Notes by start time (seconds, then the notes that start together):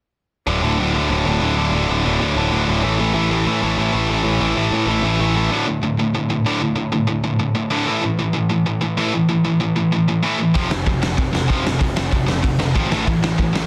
0.47 D1 D2 A2 D3
0.62 D1 D2 A2 D3
0.78 D1 D2 A2 D3
0.94 D2 A2 D3
1.10 D1 D2 A2 D3
1.25 D1 D2 A2 D3
1.40 D1 D2 A2 D3
1.58 D2 A2 D3
1.72 D1 D2 A2 D3
1.89 D1 D2 A2 D3
2.04 D1 D2 A2 D3
2.20 D2 A2 D3
2.36 D1 D2 A2 D3
2.51 D1 D2 A2 D3
2.67 D1 D2 A2 D3
2.83 A1 A2 E3 A3
2.99 A1 A2 E3 A3
3.13 A1 A2 E3 A3
3.31 A1 A2 E3 A3
3.46 A2 E3 A3
3.61 A1 A2 E3 A3
3.77 A1 A2 E3 A3
3.92 A1 A2 E3 A3
4.08 A2 E3 A3
4.24 A1 A2 E3 A3
4.40 A1 A2 E3 A3
4.56 A1 A2 E3 A3
4.71 A2 E3 A3
4.86 A1 A2 E3 A3
5.03 A1 A2 E3 A3
5.19 A1 A2 E3 A3
5.35 A2 E3 A3
5.52 D2 A2 D3
5.67 D2 A2
5.83 D2 A2
5.99 D2 A2
6.15 D2 A2
6.30 D2 A2
6.46 D2 A2 D3
6.61 D2 A2
6.75 D2 A2
6.92 D2 A2
7.07 D2 A2
7.24 D2 A2
7.39 D2 A2
7.55 D2 A2
7.70 D2 A2 D3
7.86 A2 E3 A3
8.01 A2 E3
8.19 A2 E3
8.33 A2 E3
8.49 A2 E3
8.66 A2 E3
8.81 A2 E3
8.97 A2 E3 A3
9.14 A2 E3
9.29 A2 E3
9.45 A2 E3
9.60 A2 E3
9.76 A2 E3
9.92 A2 E3
10.08 A2 E3
10.23 A2 E3 A3
10.38 A2 E3
10.54 F1 F2 C3 F3, kick, open hi-hat
10.70 F2 C3, snare
10.86 F1 F2 C3, kick, open hi-hat
11.02 F1 F2 C3, snare
11.17 F1 F2 C3, kick, open hi-hat
11.33 F1 F2 C3, snare
11.48 F1 F2 C3 F3, kick, open hi-hat
11.64 F1 F2 C3, snare
11.79 F1 F2 C3, kick, open hi-hat
11.96 F2 C3, snare
12.11 F1 F2 C3, kick, open hi-hat
12.26 F1 F2 C3, snare
12.43 F1 F2 C3, kick, open hi-hat
12.58 F1 F2 C3, snare
12.74 G#1 F2 C3 F3, kick, open hi-hat
12.90 A1 A2 E3 A3, snare
13.07 A1 A2 E3, kick, open hi-hat
13.23 A2 E3, snare
13.38 A1 A2 E3, kick, open hi-hat
13.53 A1 A2 E3, snare